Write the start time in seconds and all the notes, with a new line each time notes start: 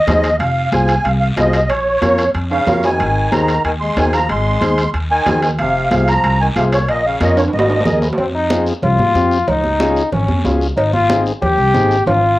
Already playing: D#5
0.07 D#2 D#4 G#4 C5, high conga, low conga, high timbale, low timbale, short guiro
0.24 high timbale, short guiro
0.39 F1 F5, high conga, high timbale, long guiro
0.72 C2 F4 G#4 C5 G#5, high conga, high timbale, short guiro
0.88 high timbale, short guiro
1.04 C2 F5, high conga, high timbale, long guiro
1.20 F5
1.37 C2 F4 G#4 C5 D#5, high conga, high timbale, low timbale, short guiro
1.53 high timbale, short guiro
1.69 A#1 C#5, high conga, high timbale, long guiro
2.01 F2 F4 A#4 C#5, high conga, high timbale, short guiro
2.18 high timbale, short guiro
2.34 F2, high conga, high timbale, long guiro
2.51 C#3 F5, high timbale
2.67 F2 F4 A#4 C#5, high conga, low conga, low timbale, short guiro
2.83 D#3 G#5, low timbale, short guiro
2.99 G#1, high conga, high timbale, long guiro
3.31 D#2 D#3 D#4 G#4 C5 A#5, high conga, high timbale, short guiro
3.48 high timbale, short guiro
3.64 D#2 D#3 G#5, high conga, high timbale, long guiro
3.81 G#3 C6
3.97 D#2 D#3 D#4 G#4 C5 G#5, high conga, high timbale, low timbale, short guiro
4.13 F3 A#5, high timbale, short guiro
4.29 G#1 G#3 C6, high conga, high timbale, long guiro
4.61 D#2 D#4 G#4 C5, high conga, high timbale, short guiro
4.78 high timbale, short guiro
4.94 D#2, high conga, high timbale, long guiro
5.10 D#3 G#5
5.26 D#2 D#4 G#4 C5, high conga, low conga, high timbale, low timbale, short guiro
5.42 D#3 G#5, high timbale, short guiro
5.58 F1 C3 F5, high conga, high timbale, long guiro
5.91 C2 C3 F4 G#4 C5 F5, high conga, high timbale, short guiro
6.08 F3 A#5, high timbale, short guiro
6.24 C2, high conga, high timbale, long guiro
6.40 D#3 G#5
6.56 C2 C3 F4 G#4 C5 F5, high conga, high timbale, short guiro
6.72 A#2 C#5, high timbale, short guiro
6.88 A#1 A#2 D#5, high conga, high timbale, long guiro
7.06 C#3 F5
7.21 F2 A#2 F4 A#4 C#5 D#5, high conga, high timbale, short guiro
7.37 A#2 C#5, high timbale, short guiro
7.48 high timbale
7.53 G#1 A#2 D#5, high conga, long guiro
7.59 low timbale
7.70 high timbale
7.80 low timbale
7.85 D#2 G#4 A#4 D#5, high conga, low conga, short guiro
8.02 low timbale, short guiro
8.13 low timbale
8.18 F2 C4, cowbell, high conga, long guiro
8.35 D#4
8.50 C4 F4 G#4, high conga, short guiro
8.67 short guiro
8.82 C2 F4, cowbell, high conga, low conga, long guiro
8.98 G#2, high conga
9.15 F2 C4 F4 G4, high conga, short guiro
9.31 short guiro
9.48 C#2 D#4, cowbell, high conga, low conga, long guiro
9.64 high conga
9.80 C#4 F4 G#4, high conga, short guiro
9.96 short guiro
10.12 G#1 C#4, cowbell, high conga, low conga, long guiro
10.28 F2, high conga
10.45 C#2 C#4 F4 G#4, high conga, low timbale, short guiro
10.61 short guiro
10.76 G#1 D#4, cowbell, high conga, long guiro
10.93 F4, high conga
11.09 C4 D#4 G#4, high conga, short guiro
11.26 short guiro
11.42 D#2 G4, cowbell, high conga, low conga, long guiro
11.58 C2
11.74 G#1 C4 D#4 G#4, high conga, short guiro
11.91 short guiro
12.06 G#1 F4, cowbell, high conga, low conga, high timbale, long guiro